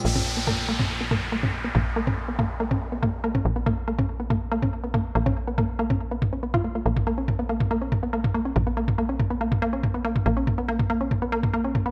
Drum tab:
T2 |-o--o--o--o--o--|o--o--o--o--o--o|--o--o--o--o--o-|-o--o--o--o--o--|

T2 |-o--o--o--o--o--|o--o--o--o--o--o|--o--o--o--o--o-|